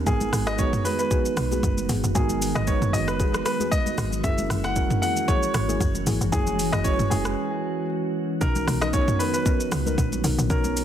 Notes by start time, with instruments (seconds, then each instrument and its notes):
0.06 log drum bass G#1, ambient pad D#3 F#3 G#3 B3 F#4, tine electric piano G#3 B3 D#4 F#4 A#4, synth stab B3 F#4 G#4, grand piano G#4, kick, low conga, shaker
0.21 high conga, shaker
0.33 log drum bass G#1, cross-stick, open hi-hat, shaker
0.47 synth stab B3 F#4 G#4, grand piano D#5, cross-stick, shaker
0.58 tine electric piano G#3 B3 D#4 F#4 B4, grand piano C#5, kick, low conga, shaker
0.73 mid tom, high conga, shaker
0.85 synth stab B3 F#4 G#4, grand piano B4, open hi-hat, shaker
0.99 grand piano B4, shaker
1.11 synth stab B3 F#4 G#4, kick, low conga, shaker
1.25 shaker
1.37 log drum bass B1, cross-stick, open hi-hat, shaker
1.51 synth stab B3 F#4 G#4, high conga, shaker
1.63 log drum bass F#1, kick, shaker
1.77 high conga, shaker
1.89 log drum bass G#1, synth stab B3 F#4 G#4, open hi-hat, low conga, shaker
2.04 log drum bass F#1, shaker
2.14 log drum bass G#1, tine electric piano G#3 B3 D#4 F#4 A#4, synth stab B3 F#4 G#4, grand piano G#4, kick, low conga, shaker
2.29 high conga, shaker
2.42 open hi-hat, shaker
2.55 log drum bass G#1, synth stab B3 F#4 G#4, grand piano D#5, cross-stick, shaker
2.66 tine electric piano G#3 B3 D#4 F#4 B4, grand piano C#5, kick, low conga, shaker
2.82 mid tom, high conga, shaker
2.93 log drum bass F#1, synth stab B3 F#4 G#4, grand piano D#5, open hi-hat, shaker
3.08 grand piano B4, cross-stick, shaker
3.19 synth stab B3 F#4 G#4, kick, low conga, shaker
3.34 cross-stick, shaker
3.45 grand piano B4, cross-stick, open hi-hat, shaker
3.60 synth stab B3 F#4 G#4, high conga, shaker
3.71 grand piano D#5, kick, shaker
3.86 high conga, shaker
3.98 log drum bass G#1, cross-stick, open hi-hat, low conga, shaker
4.13 shaker
4.23 log drum bass F#1, ambient pad E3 C#4 F#4, tine electric piano G#3 C#4 E4 F#4 A#4, synth stab A#3 E4 G#4, grand piano E5, kick, low conga, shaker
4.38 high conga, shaker
4.50 log drum bass F#1, cross-stick, open hi-hat, shaker
4.64 synth stab A#3 E4 G#4, grand piano F#5, cross-stick, shaker
4.75 tine electric piano G#3 C#4 E4 F#4 A#4, kick, low conga, shaker
4.90 mid tom, high conga, shaker
5.02 synth stab A#3 E4 G#4, grand piano F#5, open hi-hat, shaker
5.17 shaker
5.28 synth stab A#3 E4 G#4, grand piano C#5, kick, low conga, shaker
5.43 shaker
5.54 log drum bass G#1, grand piano C#5, cross-stick, open hi-hat, shaker
5.68 synth stab A#3 E4 G#4, high conga, shaker
5.80 log drum bass F#1, kick, shaker
5.95 high conga, shaker
6.06 log drum bass G#1, synth stab A#3 E4 G#4, open hi-hat, low conga, shaker
6.21 log drum bass F#1, shaker
6.32 log drum bass F#1, tine electric piano G#3 C#4 E4 F#4 C#5, synth stab A#3 E4 G#4, grand piano G#4, kick, low conga, shaker
6.47 high conga, shaker
6.59 open hi-hat, shaker
6.72 log drum bass F#1, synth stab A#3 E4 G#4, grand piano D#5, cross-stick, shaker
6.84 tine electric piano G#3 C#4 E4 F#4 B4, grand piano C#5, kick, low conga, shaker
6.92 tine electric piano C#5
6.99 mid tom, high conga, shaker
7.10 log drum bass F#1, synth stab A#3 E4 G#4, grand piano G#4, open hi-hat, shaker
7.25 cross-stick, shaker
8.40 log drum bass B1, ambient pad D#3 F#3 B3, tine electric piano B3 C#4 D#4 F#4 A#4, synth stab B3 D#4 A#4, grand piano A#4, kick, low conga, shaker
8.55 high conga, shaker
8.68 log drum bass B1, cross-stick, open hi-hat, shaker
8.81 synth stab B3 D#4 A#4, grand piano D#5, cross-stick, shaker
8.92 tine electric piano B3 C#4 D#4 F#4 C#5, grand piano C#5, kick, low conga, shaker
9.08 mid tom, high conga, shaker
9.19 synth stab B3 D#4 A#4, grand piano B4, open hi-hat, shaker
9.34 grand piano B4, shaker
9.46 synth stab B3 D#4 A#4, kick, low conga, shaker
9.60 shaker
9.72 log drum bass C#2, cross-stick, open hi-hat, shaker
9.86 synth stab B3 D#4 A#4, high conga, shaker
9.98 log drum bass A#1, kick, shaker
10.12 high conga, shaker
10.24 log drum bass B1, synth stab B3 D#4 A#4, open hi-hat, low conga, shaker
10.38 log drum bass A#1, shaker
10.49 log drum bass B1, tine electric piano B3 C#4 D#4 F#4 C#5, synth stab B3 D#4 A#4, ambient pad G#4, grand piano A#4, kick, low conga, shaker
10.64 high conga, shaker
10.77 open hi-hat, shaker